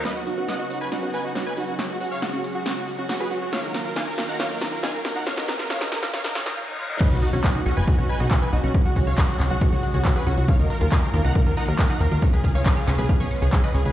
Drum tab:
CC |--------------------------------|--------------------------------|--------------------------------|--------------------------------|
HH |x-x-o-x-x-x-o-x-x-x-o-x-x---o-x-|x-x-o-x-x-x-o-x-x-x-o-x-o-x-o-x-|x-x-o-x-x-x-o-x-x-x-o-x-x---o-x-|x-x-o---x-x-o-x-x-x-o-x---------|
CP |--------------------------------|--------------------------------|--------------------------------|--------------------------------|
SD |o-------o-------o-------o-------|o-------o-------o-------o-------|o---o---o---o---o---o---o---o---|o-o-o-o-o-o-o-o-o-o-o-o---------|
BD |--------------------------------|--------------------------------|--------------------------------|--------------------------------|

CC |x-------------------------------|--------------------------------|--------------------------------|--------------------------------|
HH |x-x-o-x-x-x-o-x-x-x-o-x-x-x-oxx-|x-x-o-x-x-x-o-x-x-x-o-x-o-x-oxx-|x-x-o-x-x-x-o-x-x-x-o-x-x-x-oxx-|x-x-o-x-x-x-o-x-x-x-o-x-o-x-oxx-|
CP |--------x---------------x-------|--------x---x-----------x-------|--------x---------------x-------|--------x---x-----------x-------|
SD |--------------------------------|--------------------------------|--------------------------------|--------------------------------|
BD |o-------o-------o-------o-------|o---o---o-------o-------o-------|o-------o-------o-------o-------|o---o---o-------o-------o-------|